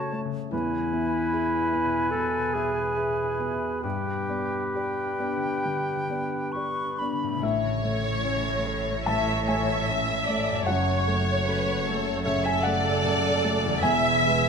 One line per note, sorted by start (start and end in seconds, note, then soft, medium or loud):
0.00 0.55 F#2 soft
0.00 0.23 C#3 soft
0.00 0.55 C#3 soft
0.00 0.13 A3 soft
0.00 0.56 A3 soft
0.00 0.55 C#4 soft
0.00 0.24 F#4 medium
0.00 0.55 A4 soft
0.00 0.12 C#5 soft
0.00 0.21 C#5 soft
0.00 0.56 C#5 soft
0.00 0.21 A5 soft
0.12 0.48 A3 soft
0.12 0.48 C#5 soft
0.24 0.55 C#3 soft
0.51 3.87 E2 soft
0.51 2.10 E2 soft
0.51 2.12 E4 medium
0.51 3.80 B4 soft
0.51 3.79 G#5 soft
0.79 2.11 B3 soft
0.92 1.29 B3 soft
0.92 1.29 E5 soft
1.06 3.87 G#5 soft
1.32 1.69 G#4 soft
1.32 2.94 B4 soft
1.32 1.69 E5 soft
1.59 3.22 E4 soft
1.73 2.09 B3 soft
1.73 2.09 E5 soft
1.85 2.38 B2 soft
2.11 2.80 B2 soft
2.11 4.13 B3 soft
2.11 2.56 A4 medium
2.39 3.51 B2 soft
2.54 2.93 B3 soft
2.54 3.83 G#4 medium
2.54 2.93 E5 soft
2.67 3.87 G#4 soft
2.95 3.35 G#4 soft
2.95 4.74 B4 soft
2.95 3.35 E5 soft
3.23 3.87 E4 soft
3.39 3.80 B3 soft
3.39 3.80 E5 soft
3.52 3.87 B2 soft
3.82 7.45 G2 soft
3.82 5.62 G2 soft
3.82 6.51 G4 medium
3.82 7.05 B4 soft
3.82 4.64 G5 soft
4.14 5.64 B3 soft
4.29 4.71 B3 soft
4.29 4.71 D5 soft
4.45 6.24 G4 soft
4.73 5.17 G4 soft
4.73 6.53 B4 soft
4.73 5.17 D5 soft
4.73 6.54 G5 medium
5.05 6.83 D4 soft
5.19 5.61 B3 soft
5.19 5.62 D5 soft
5.36 5.95 D3 soft
5.65 6.37 D3 soft
5.65 7.45 B3 soft
5.96 7.12 D3 soft
6.10 6.51 B3 soft
6.10 6.51 D5 soft
6.25 7.45 G4 soft
6.52 6.95 G4 soft
6.52 7.45 B4 soft
6.52 6.96 D5 soft
6.52 7.00 C#6 medium
6.84 7.45 D4 soft
6.99 7.39 B3 soft
6.99 7.39 D5 soft
6.99 7.42 B5 soft
7.13 7.45 D3 soft
7.23 10.61 A2 soft
7.28 10.52 A3 soft
7.32 11.22 C#3 soft
7.37 10.68 E4 soft
7.41 10.63 A1 medium
7.41 9.02 A2 medium
7.41 10.63 A2 medium
7.41 9.02 C#5 medium
7.41 9.03 C#5 medium
7.41 9.03 E5 medium
7.84 8.21 A3 soft
7.84 8.21 C#5 soft
8.24 8.61 C#4 soft
8.24 8.61 C#5 soft
8.66 9.03 A3 soft
8.66 9.03 C#5 soft
9.05 9.72 E3 soft
9.05 9.83 C#5 medium
9.05 9.45 E5 medium
9.05 9.44 A5 medium
9.46 9.84 A3 soft
9.46 9.84 C#5 soft
9.46 10.64 E5 medium
9.46 10.64 G#5 medium
9.87 10.23 C#4 soft
9.87 10.24 C#5 soft
9.87 10.27 E5 medium
10.26 10.64 A3 soft
10.26 10.64 C#5 soft
10.26 10.67 D5 medium
10.49 13.77 F#2 medium
10.53 13.79 A3 soft
10.63 13.78 F#2 medium
10.63 13.84 A4 soft
10.63 12.21 C#5 medium
10.63 12.21 F#5 medium
10.67 13.79 F#1 medium
10.67 12.21 F#2 medium
10.67 12.22 C#5 medium
10.67 11.47 C#5 medium
11.07 11.43 A3 soft
11.07 11.43 A4 soft
11.46 11.83 C#4 soft
11.46 11.83 A4 soft
11.46 11.86 B4 medium
11.87 12.22 A3 soft
11.87 12.23 A4 medium
11.87 12.23 A4 soft
12.24 12.88 C#3 soft
12.24 13.82 A4 medium
12.24 12.44 C#5 medium
12.24 12.43 E5 medium
12.44 12.64 E5 medium
12.44 12.63 G#5 medium
12.63 13.00 A3 soft
12.63 13.00 A4 soft
12.63 13.82 D5 medium
12.63 13.78 F#5 medium
13.04 13.39 C#3 soft
13.04 13.39 A4 medium
13.44 13.80 A3 soft
13.44 13.80 A4 medium
13.65 14.49 E2 medium
13.71 14.49 G#3 medium
13.75 14.49 E4 medium
13.79 14.49 B4 medium
13.79 14.49 E5 medium
13.79 14.49 G#5 medium
13.83 14.49 E1 medium
13.83 14.49 E2 medium
13.83 14.49 E5 medium
14.26 14.49 G#3 medium
14.26 14.49 B4 medium